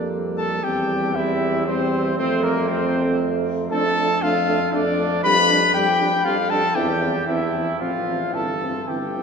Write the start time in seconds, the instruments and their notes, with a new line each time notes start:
Already playing: bass trombone F2, euphonium G3, french horn A#3, trumpet D4, cornet D5
0.37 trumpet A4, cornet A5
0.63 bass trombone E2, euphonium G3, french horn C4, trumpet G4, cornet G5
1.15 euphonium G3, french horn C4, trumpet E4, cornet E5
1.66 euphonium G3, trumpet C4, french horn C4, cornet C5
2.17 bass trombone F2, euphonium A3, trumpet C4, french horn C4, cornet C5
2.43 trumpet A#3, cornet A#4
2.69 euphonium A3, trumpet C4, french horn C4, cornet C5
3.71 bass trombone F2, euphonium A3, french horn D4, trumpet A4, cornet A5
3.97 euphonium A3, french horn D4
4.22 bass trombone F2, euphonium A3, french horn D4, trumpet F4, cornet F5
4.48 euphonium A3, french horn D4
4.73 bass trombone F2, euphonium A3, trumpet D4, french horn D4, cornet D5
4.99 euphonium A3, french horn D4
5.23 bass trombone F2, euphonium G3, french horn D4, trumpet B4, cornet B5
5.49 euphonium G3, french horn D4
5.74 bass trombone F2, euphonium G3, french horn D4, trumpet G4, cornet G5
6.00 euphonium G3, french horn D4
6.24 bass trombone F2, euphonium G3, french horn D4, trumpet F4, cornet F5
6.50 euphonium G3, french horn D4, trumpet A4, cornet A5
6.74 bass trombone E2, euphonium E3, french horn C4, trumpet G4, cornet G5
7.01 euphonium E3, french horn C4
7.26 bass trombone E2, euphonium E3, french horn C4, trumpet E4, cornet E5
7.53 euphonium E3, french horn C4
7.79 bass trombone A1, euphonium F3, french horn C4, trumpet F4, cornet F5
8.06 euphonium F3, french horn C4
8.33 bass trombone G1, euphonium E3, french horn C4, trumpet A4, cornet A5
8.61 euphonium E3, french horn C4
8.87 bass trombone G1, euphonium E3, french horn C4, trumpet G4, cornet G5
9.15 euphonium E3, french horn C4